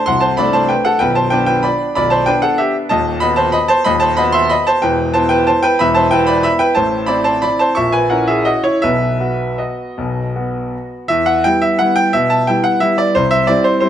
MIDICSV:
0, 0, Header, 1, 2, 480
1, 0, Start_track
1, 0, Key_signature, 1, "minor"
1, 0, Tempo, 315457
1, 102, Time_signature, 3, 2, 24, 8
1, 5867, Tempo, 323799
1, 10667, Tempo, 336323
1, 12107, Tempo, 360577
1, 13067, Tempo, 379267
1, 15947, Tempo, 339943
1, 19891, End_track
2, 0, Start_track
2, 0, Title_t, "Grand piano"
2, 0, Program_c, 0, 0
2, 90, Note_on_c, 0, 84, 90
2, 112, Note_on_c, 0, 24, 40
2, 113, Note_on_c, 0, 78, 69
2, 116, Note_on_c, 0, 36, 49
2, 311, Note_on_c, 0, 81, 78
2, 323, Note_off_c, 0, 78, 0
2, 327, Note_off_c, 0, 84, 0
2, 327, Note_on_c, 0, 72, 62
2, 367, Control_c, 0, 64, 127
2, 552, Note_off_c, 0, 72, 0
2, 561, Note_off_c, 0, 81, 0
2, 563, Note_off_c, 0, 24, 0
2, 564, Note_on_c, 0, 83, 81
2, 565, Note_off_c, 0, 36, 0
2, 586, Note_on_c, 0, 74, 69
2, 587, Note_on_c, 0, 57, 39
2, 588, Note_on_c, 0, 62, 38
2, 808, Note_off_c, 0, 74, 0
2, 809, Note_on_c, 0, 81, 80
2, 814, Note_off_c, 0, 83, 0
2, 822, Note_on_c, 0, 72, 62
2, 1043, Note_on_c, 0, 79, 78
2, 1052, Note_off_c, 0, 72, 0
2, 1063, Note_off_c, 0, 81, 0
2, 1063, Note_on_c, 0, 71, 54
2, 1079, Control_c, 0, 64, 0
2, 1288, Note_on_c, 0, 78, 86
2, 1292, Note_off_c, 0, 71, 0
2, 1299, Note_off_c, 0, 79, 0
2, 1309, Note_on_c, 0, 69, 65
2, 1489, Note_off_c, 0, 57, 0
2, 1489, Note_off_c, 0, 62, 0
2, 1507, Note_on_c, 0, 79, 85
2, 1525, Note_off_c, 0, 69, 0
2, 1531, Note_off_c, 0, 78, 0
2, 1533, Note_on_c, 0, 71, 64
2, 1534, Note_on_c, 0, 23, 47
2, 1534, Note_on_c, 0, 35, 51
2, 1749, Note_off_c, 0, 71, 0
2, 1752, Note_off_c, 0, 79, 0
2, 1755, Note_on_c, 0, 81, 78
2, 1769, Note_on_c, 0, 72, 59
2, 1832, Control_c, 0, 64, 127
2, 1984, Note_on_c, 0, 79, 81
2, 1989, Note_off_c, 0, 23, 0
2, 1990, Note_off_c, 0, 35, 0
2, 1990, Note_off_c, 0, 72, 0
2, 2000, Note_off_c, 0, 81, 0
2, 2008, Note_on_c, 0, 59, 43
2, 2009, Note_on_c, 0, 71, 63
2, 2016, Note_on_c, 0, 62, 40
2, 2205, Note_off_c, 0, 79, 0
2, 2224, Note_off_c, 0, 71, 0
2, 2228, Note_on_c, 0, 79, 85
2, 2247, Note_on_c, 0, 71, 57
2, 2476, Note_on_c, 0, 83, 75
2, 2485, Note_off_c, 0, 71, 0
2, 2493, Note_off_c, 0, 79, 0
2, 2495, Note_on_c, 0, 74, 58
2, 2522, Control_c, 0, 64, 0
2, 2930, Note_off_c, 0, 59, 0
2, 2934, Note_off_c, 0, 62, 0
2, 2950, Note_off_c, 0, 74, 0
2, 2950, Note_off_c, 0, 83, 0
2, 2973, Note_on_c, 0, 83, 85
2, 2990, Note_on_c, 0, 74, 72
2, 2993, Note_on_c, 0, 35, 52
2, 2998, Note_on_c, 0, 23, 46
2, 3199, Note_on_c, 0, 81, 80
2, 3207, Note_off_c, 0, 74, 0
2, 3215, Note_off_c, 0, 83, 0
2, 3215, Note_on_c, 0, 72, 71
2, 3217, Control_c, 0, 64, 127
2, 3438, Note_off_c, 0, 72, 0
2, 3438, Note_on_c, 0, 79, 90
2, 3446, Note_off_c, 0, 35, 0
2, 3447, Note_off_c, 0, 81, 0
2, 3449, Note_off_c, 0, 23, 0
2, 3458, Note_on_c, 0, 59, 43
2, 3459, Note_on_c, 0, 71, 69
2, 3470, Note_on_c, 0, 62, 44
2, 3477, Control_c, 0, 64, 0
2, 3682, Note_off_c, 0, 71, 0
2, 3682, Note_on_c, 0, 78, 84
2, 3688, Note_off_c, 0, 79, 0
2, 3706, Note_on_c, 0, 69, 61
2, 3926, Note_on_c, 0, 76, 74
2, 3931, Note_off_c, 0, 69, 0
2, 3936, Note_off_c, 0, 78, 0
2, 3945, Note_on_c, 0, 67, 60
2, 4171, Note_off_c, 0, 67, 0
2, 4178, Note_off_c, 0, 76, 0
2, 4360, Note_off_c, 0, 59, 0
2, 4366, Note_off_c, 0, 62, 0
2, 4403, Note_on_c, 0, 81, 88
2, 4417, Note_on_c, 0, 75, 69
2, 4423, Note_on_c, 0, 39, 55
2, 4427, Note_on_c, 0, 27, 55
2, 4658, Control_c, 0, 64, 127
2, 4864, Note_off_c, 0, 75, 0
2, 4874, Note_on_c, 0, 83, 97
2, 4886, Note_off_c, 0, 39, 0
2, 4889, Note_off_c, 0, 27, 0
2, 4891, Note_off_c, 0, 81, 0
2, 4895, Note_on_c, 0, 75, 64
2, 4897, Note_on_c, 0, 59, 44
2, 4903, Note_on_c, 0, 66, 43
2, 5114, Note_on_c, 0, 81, 83
2, 5122, Note_off_c, 0, 75, 0
2, 5129, Note_off_c, 0, 83, 0
2, 5131, Note_on_c, 0, 72, 69
2, 5358, Note_on_c, 0, 83, 84
2, 5362, Note_off_c, 0, 72, 0
2, 5371, Note_off_c, 0, 81, 0
2, 5375, Note_on_c, 0, 75, 70
2, 5405, Control_c, 0, 64, 0
2, 5605, Note_off_c, 0, 75, 0
2, 5605, Note_on_c, 0, 81, 100
2, 5614, Note_off_c, 0, 83, 0
2, 5625, Note_on_c, 0, 72, 77
2, 5803, Note_off_c, 0, 59, 0
2, 5806, Note_off_c, 0, 66, 0
2, 5847, Note_off_c, 0, 72, 0
2, 5850, Note_on_c, 0, 83, 93
2, 5854, Note_off_c, 0, 81, 0
2, 5869, Note_on_c, 0, 39, 61
2, 5871, Note_on_c, 0, 75, 79
2, 5873, Note_on_c, 0, 27, 47
2, 6077, Note_on_c, 0, 81, 96
2, 6086, Note_off_c, 0, 75, 0
2, 6092, Note_off_c, 0, 83, 0
2, 6095, Control_c, 0, 64, 127
2, 6100, Note_on_c, 0, 72, 63
2, 6325, Note_off_c, 0, 72, 0
2, 6328, Note_on_c, 0, 83, 93
2, 6330, Note_off_c, 0, 39, 0
2, 6331, Note_off_c, 0, 81, 0
2, 6332, Note_off_c, 0, 27, 0
2, 6341, Note_on_c, 0, 59, 44
2, 6344, Note_on_c, 0, 75, 65
2, 6356, Note_on_c, 0, 66, 47
2, 6562, Note_on_c, 0, 84, 94
2, 6573, Note_off_c, 0, 75, 0
2, 6582, Note_off_c, 0, 83, 0
2, 6585, Note_on_c, 0, 76, 74
2, 6815, Note_on_c, 0, 83, 86
2, 6818, Note_off_c, 0, 76, 0
2, 6824, Note_off_c, 0, 84, 0
2, 6837, Note_on_c, 0, 75, 72
2, 6853, Control_c, 0, 64, 0
2, 7065, Note_off_c, 0, 75, 0
2, 7071, Note_off_c, 0, 83, 0
2, 7071, Note_on_c, 0, 81, 95
2, 7084, Note_on_c, 0, 72, 73
2, 7258, Note_off_c, 0, 59, 0
2, 7265, Note_off_c, 0, 66, 0
2, 7296, Note_on_c, 0, 79, 84
2, 7302, Note_off_c, 0, 72, 0
2, 7312, Note_off_c, 0, 81, 0
2, 7313, Note_on_c, 0, 28, 45
2, 7313, Note_on_c, 0, 71, 61
2, 7316, Note_on_c, 0, 40, 60
2, 7618, Control_c, 0, 64, 127
2, 7753, Note_off_c, 0, 71, 0
2, 7764, Note_on_c, 0, 81, 88
2, 7772, Note_off_c, 0, 28, 0
2, 7774, Note_off_c, 0, 40, 0
2, 7777, Note_on_c, 0, 72, 62
2, 7778, Note_off_c, 0, 79, 0
2, 7783, Note_on_c, 0, 59, 41
2, 7790, Note_on_c, 0, 64, 45
2, 7992, Note_on_c, 0, 79, 88
2, 8010, Note_off_c, 0, 72, 0
2, 8014, Note_on_c, 0, 71, 68
2, 8020, Note_off_c, 0, 81, 0
2, 8252, Note_off_c, 0, 71, 0
2, 8257, Note_on_c, 0, 81, 82
2, 8259, Note_off_c, 0, 79, 0
2, 8274, Note_on_c, 0, 72, 62
2, 8296, Control_c, 0, 64, 0
2, 8491, Note_on_c, 0, 79, 93
2, 8504, Note_off_c, 0, 72, 0
2, 8508, Note_on_c, 0, 71, 79
2, 8513, Note_off_c, 0, 81, 0
2, 8697, Note_off_c, 0, 59, 0
2, 8700, Note_off_c, 0, 64, 0
2, 8734, Note_off_c, 0, 71, 0
2, 8737, Note_on_c, 0, 83, 91
2, 8743, Note_off_c, 0, 79, 0
2, 8757, Note_on_c, 0, 76, 72
2, 8758, Note_on_c, 0, 28, 55
2, 8760, Note_on_c, 0, 40, 61
2, 8965, Note_on_c, 0, 81, 90
2, 8975, Note_off_c, 0, 76, 0
2, 8981, Note_off_c, 0, 83, 0
2, 8988, Note_on_c, 0, 72, 65
2, 8994, Control_c, 0, 64, 127
2, 9206, Note_on_c, 0, 79, 90
2, 9211, Note_off_c, 0, 72, 0
2, 9215, Note_off_c, 0, 28, 0
2, 9216, Note_off_c, 0, 40, 0
2, 9216, Note_off_c, 0, 81, 0
2, 9228, Note_on_c, 0, 59, 40
2, 9228, Note_on_c, 0, 71, 72
2, 9230, Note_on_c, 0, 64, 47
2, 9440, Note_on_c, 0, 83, 93
2, 9453, Note_off_c, 0, 71, 0
2, 9454, Note_on_c, 0, 74, 64
2, 9459, Note_off_c, 0, 79, 0
2, 9665, Note_off_c, 0, 83, 0
2, 9687, Note_on_c, 0, 83, 88
2, 9689, Note_off_c, 0, 74, 0
2, 9699, Note_on_c, 0, 76, 68
2, 9734, Control_c, 0, 64, 0
2, 9921, Note_on_c, 0, 79, 91
2, 9930, Note_off_c, 0, 76, 0
2, 9936, Note_on_c, 0, 71, 68
2, 9941, Note_off_c, 0, 83, 0
2, 10126, Note_off_c, 0, 59, 0
2, 10126, Note_off_c, 0, 64, 0
2, 10152, Note_on_c, 0, 81, 84
2, 10159, Note_off_c, 0, 71, 0
2, 10168, Note_off_c, 0, 79, 0
2, 10173, Note_on_c, 0, 45, 49
2, 10173, Note_on_c, 0, 72, 70
2, 10175, Note_on_c, 0, 33, 44
2, 10444, Control_c, 0, 64, 127
2, 10623, Note_on_c, 0, 83, 81
2, 10626, Note_off_c, 0, 72, 0
2, 10642, Note_on_c, 0, 60, 42
2, 10645, Note_off_c, 0, 45, 0
2, 10646, Note_off_c, 0, 33, 0
2, 10646, Note_on_c, 0, 74, 71
2, 10649, Note_off_c, 0, 81, 0
2, 10650, Note_on_c, 0, 64, 45
2, 10880, Note_on_c, 0, 81, 86
2, 10884, Note_off_c, 0, 74, 0
2, 10889, Note_on_c, 0, 72, 57
2, 10891, Note_off_c, 0, 83, 0
2, 11128, Note_off_c, 0, 72, 0
2, 11130, Note_on_c, 0, 83, 78
2, 11142, Note_off_c, 0, 81, 0
2, 11147, Note_on_c, 0, 74, 65
2, 11180, Control_c, 0, 64, 0
2, 11376, Note_off_c, 0, 74, 0
2, 11381, Note_on_c, 0, 81, 87
2, 11385, Note_off_c, 0, 83, 0
2, 11399, Note_on_c, 0, 72, 73
2, 11563, Note_off_c, 0, 60, 0
2, 11567, Note_off_c, 0, 64, 0
2, 11603, Note_on_c, 0, 85, 81
2, 11616, Note_off_c, 0, 72, 0
2, 11623, Note_off_c, 0, 81, 0
2, 11624, Note_on_c, 0, 76, 63
2, 11628, Note_on_c, 0, 46, 53
2, 11630, Note_on_c, 0, 34, 46
2, 11844, Note_off_c, 0, 76, 0
2, 11850, Note_off_c, 0, 85, 0
2, 11853, Note_on_c, 0, 80, 75
2, 11866, Note_on_c, 0, 71, 61
2, 11921, Control_c, 0, 64, 127
2, 12090, Note_off_c, 0, 46, 0
2, 12090, Note_off_c, 0, 71, 0
2, 12091, Note_off_c, 0, 34, 0
2, 12099, Note_on_c, 0, 78, 61
2, 12100, Note_off_c, 0, 80, 0
2, 12113, Note_on_c, 0, 61, 33
2, 12113, Note_on_c, 0, 70, 47
2, 12123, Note_on_c, 0, 64, 40
2, 12327, Note_off_c, 0, 70, 0
2, 12336, Note_off_c, 0, 78, 0
2, 12336, Note_on_c, 0, 76, 73
2, 12347, Note_on_c, 0, 68, 55
2, 12568, Note_off_c, 0, 68, 0
2, 12570, Note_on_c, 0, 75, 77
2, 12579, Note_off_c, 0, 76, 0
2, 12587, Note_on_c, 0, 66, 59
2, 12598, Control_c, 0, 64, 0
2, 12809, Note_off_c, 0, 66, 0
2, 12813, Note_off_c, 0, 64, 0
2, 12817, Note_on_c, 0, 73, 74
2, 12818, Note_off_c, 0, 75, 0
2, 12833, Note_on_c, 0, 64, 53
2, 13015, Note_off_c, 0, 61, 0
2, 13053, Note_off_c, 0, 64, 0
2, 13061, Note_on_c, 0, 76, 85
2, 13062, Note_off_c, 0, 73, 0
2, 13080, Note_on_c, 0, 35, 43
2, 13084, Note_on_c, 0, 71, 61
2, 13086, Note_on_c, 0, 47, 48
2, 13356, Control_c, 0, 64, 127
2, 13536, Note_off_c, 0, 35, 0
2, 13539, Note_off_c, 0, 47, 0
2, 13542, Note_on_c, 0, 59, 35
2, 13553, Note_on_c, 0, 66, 42
2, 13995, Note_off_c, 0, 71, 0
2, 14023, Note_off_c, 0, 66, 0
2, 14027, Note_on_c, 0, 75, 51
2, 14034, Note_off_c, 0, 76, 0
2, 14042, Note_on_c, 0, 66, 40
2, 14052, Control_c, 0, 64, 0
2, 14467, Note_off_c, 0, 59, 0
2, 14526, Note_on_c, 0, 47, 43
2, 14530, Note_on_c, 0, 35, 39
2, 14797, Control_c, 0, 64, 127
2, 14982, Note_off_c, 0, 47, 0
2, 14984, Note_off_c, 0, 35, 0
2, 14992, Note_off_c, 0, 66, 0
2, 15011, Note_on_c, 0, 59, 32
2, 15011, Note_on_c, 0, 66, 35
2, 15493, Control_c, 0, 64, 0
2, 15711, Note_off_c, 0, 75, 0
2, 15903, Note_off_c, 0, 59, 0
2, 15904, Note_off_c, 0, 66, 0
2, 15926, Note_on_c, 0, 76, 90
2, 15944, Note_on_c, 0, 40, 60
2, 16173, Note_on_c, 0, 78, 89
2, 16178, Note_off_c, 0, 76, 0
2, 16202, Control_c, 0, 64, 127
2, 16417, Note_off_c, 0, 40, 0
2, 16425, Note_off_c, 0, 78, 0
2, 16430, Note_on_c, 0, 79, 92
2, 16445, Control_c, 0, 64, 0
2, 16452, Note_on_c, 0, 55, 42
2, 16455, Note_on_c, 0, 59, 38
2, 16461, Note_on_c, 0, 64, 46
2, 16675, Note_off_c, 0, 79, 0
2, 16676, Note_on_c, 0, 76, 77
2, 16885, Note_off_c, 0, 55, 0
2, 16887, Note_off_c, 0, 59, 0
2, 16889, Note_off_c, 0, 64, 0
2, 16918, Note_on_c, 0, 78, 92
2, 16923, Note_off_c, 0, 76, 0
2, 16944, Note_on_c, 0, 55, 42
2, 16949, Note_on_c, 0, 59, 43
2, 16953, Note_on_c, 0, 64, 43
2, 17157, Note_on_c, 0, 79, 96
2, 17167, Note_off_c, 0, 78, 0
2, 17372, Note_off_c, 0, 55, 0
2, 17375, Note_off_c, 0, 59, 0
2, 17377, Note_off_c, 0, 64, 0
2, 17403, Note_off_c, 0, 79, 0
2, 17403, Note_on_c, 0, 76, 89
2, 17424, Note_on_c, 0, 47, 57
2, 17641, Note_on_c, 0, 81, 87
2, 17645, Note_off_c, 0, 76, 0
2, 17651, Control_c, 0, 64, 127
2, 17882, Note_off_c, 0, 47, 0
2, 17885, Note_off_c, 0, 81, 0
2, 17886, Note_on_c, 0, 79, 78
2, 17901, Control_c, 0, 64, 0
2, 17906, Note_on_c, 0, 55, 41
2, 17913, Note_on_c, 0, 59, 39
2, 17919, Note_on_c, 0, 64, 47
2, 18117, Note_on_c, 0, 78, 86
2, 18126, Note_off_c, 0, 79, 0
2, 18329, Note_off_c, 0, 55, 0
2, 18333, Note_off_c, 0, 59, 0
2, 18337, Note_off_c, 0, 64, 0
2, 18353, Note_on_c, 0, 76, 82
2, 18363, Note_off_c, 0, 78, 0
2, 18370, Note_on_c, 0, 55, 40
2, 18374, Note_on_c, 0, 59, 40
2, 18380, Note_on_c, 0, 64, 44
2, 18602, Note_on_c, 0, 74, 86
2, 18604, Note_off_c, 0, 76, 0
2, 18802, Note_off_c, 0, 55, 0
2, 18804, Note_off_c, 0, 59, 0
2, 18808, Note_off_c, 0, 64, 0
2, 18840, Note_on_c, 0, 72, 89
2, 18844, Note_off_c, 0, 74, 0
2, 18854, Note_on_c, 0, 36, 55
2, 19063, Note_on_c, 0, 76, 93
2, 19075, Note_off_c, 0, 72, 0
2, 19082, Control_c, 0, 64, 127
2, 19296, Note_on_c, 0, 74, 86
2, 19301, Note_off_c, 0, 36, 0
2, 19304, Note_off_c, 0, 76, 0
2, 19307, Note_on_c, 0, 55, 44
2, 19313, Note_on_c, 0, 60, 44
2, 19322, Note_on_c, 0, 64, 49
2, 19330, Control_c, 0, 64, 0
2, 19536, Note_on_c, 0, 72, 82
2, 19540, Note_off_c, 0, 74, 0
2, 19736, Note_off_c, 0, 55, 0
2, 19740, Note_off_c, 0, 60, 0
2, 19744, Note_off_c, 0, 64, 0
2, 19745, Note_off_c, 0, 72, 0
2, 19766, Note_on_c, 0, 72, 78
2, 19782, Note_on_c, 0, 60, 39
2, 19783, Note_on_c, 0, 55, 43
2, 19789, Note_on_c, 0, 64, 50
2, 19891, Note_off_c, 0, 55, 0
2, 19891, Note_off_c, 0, 60, 0
2, 19891, Note_off_c, 0, 64, 0
2, 19891, Note_off_c, 0, 72, 0
2, 19891, End_track
0, 0, End_of_file